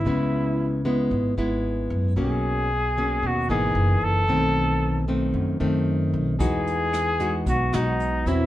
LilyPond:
<<
  \new Staff \with { instrumentName = "Flugelhorn" } { \time 4/4 \key b \major \tempo 4 = 113 e'4. r2 r8 | gis'2 fis'8 gis'4 a'8~ | a'4. r2 r8 | gis'2 fis'8 dis'4 e'8 | }
  \new Staff \with { instrumentName = "Nylon-string guitar" } { \time 4/4 \key b \major << { <gis b e'>4. <gis b e'>4 <gis b e'>4. | <fis ais cis'>4 r8 <fis ais cis'>4 <e ais dis'>4. | <dis a c'>4. <dis a c'>4 <dis a c'>4. | <gis dis' fis'>4. <gis dis' fis'>4 <gis dis' fis'>4 <fis bis e'>8 | } \\ { cis2 gis,2 | b,2 b,4 r4 | b,2 fis,2 | e2 b,2 | } >> }
  \new Staff \with { instrumentName = "Upright bass" } { \clef bass \time 4/4 \key b \major cis,2 gis,,8 gis,,4 fis,8 | b,,2 dis,8 gis,,8 fis,,8 fis,,8 | b,,2 fis,8 fis,4 b,,8 | e,2 b,,8 b,,4 e,8 | }
  \new DrumStaff \with { instrumentName = "Drums" } \drummode { \time 4/4 r4 r4 r4 r4 | r4 r4 r4 r4 | r4 r4 r4 r4 | <hh bd>8 hh8 <hh ss>8 hh8 <hh bd>8 <hh ss>8 hh8 hh8 | }
>>